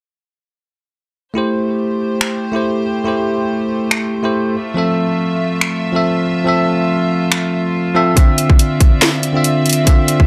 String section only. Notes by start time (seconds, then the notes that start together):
1.36 A3 G4 C5
4.55 F4 E5
8.17 C4 D5 E5